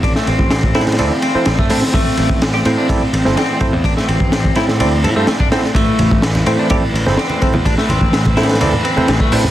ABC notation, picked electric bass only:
X:1
M:4/4
L:1/16
Q:1/4=126
K:Am
V:1 name="Picked electric bass" clef=bass
A,,, z A,,, A,,,3 A,,2 D,, z3 A,,, z A,, z | A,,, z A,,, A,,,3 A,, z A,,, z A,,, G,,, z3 E,, | A,,, z A,,, A,,,3 A,,2 D,,2 A,, G,, z4 | A,,, z A,,, A,,,3 A,, z A,,, z A,,, G,,, z3 E,, |
A,,, z A,,, A,,,3 A,,2 D,, z3 A,,, z A,, z |]